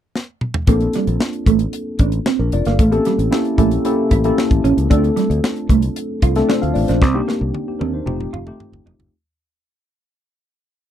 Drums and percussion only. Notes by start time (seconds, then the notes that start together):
0.16 snare
0.41 mid tom
0.54 floor tom
0.67 kick, closed hi-hat
0.81 closed hi-hat
0.93 snare, closed hi-hat
1.07 closed hi-hat
1.20 snare
1.33 closed hi-hat
1.46 kick, closed hi-hat
1.59 closed hi-hat
1.73 closed hi-hat
1.99 kick, closed hi-hat
2.12 closed hi-hat
2.26 snare
2.52 closed hi-hat
2.65 snare, closed hi-hat
2.79 kick, closed hi-hat
2.92 closed hi-hat
3.05 snare, closed hi-hat
3.19 closed hi-hat
3.32 snare
3.45 closed hi-hat
3.58 kick, closed hi-hat
3.71 closed hi-hat
3.85 closed hi-hat
4.11 kick, closed hi-hat
4.24 closed hi-hat
4.38 snare
4.51 kick, closed hi-hat
4.65 closed hi-hat
4.78 closed hi-hat
4.91 kick, closed hi-hat
5.04 closed hi-hat
5.17 snare, closed hi-hat
5.31 closed hi-hat
5.44 snare
5.56 closed hi-hat
5.69 kick, closed hi-hat
5.82 closed hi-hat
5.96 closed hi-hat
6.22 kick, closed hi-hat
6.36 snare, closed hi-hat
6.50 snare
6.63 closed hi-hat
6.75 open hi-hat
6.88 snare, closed hi-hat
7.02 kick, snare
7.29 snare
7.54 high tom
7.81 high tom
8.07 mid tom
8.21 mid tom
8.34 mid tom
8.47 mid tom
8.60 mid tom
8.73 floor tom
8.87 floor tom
9.00 floor tom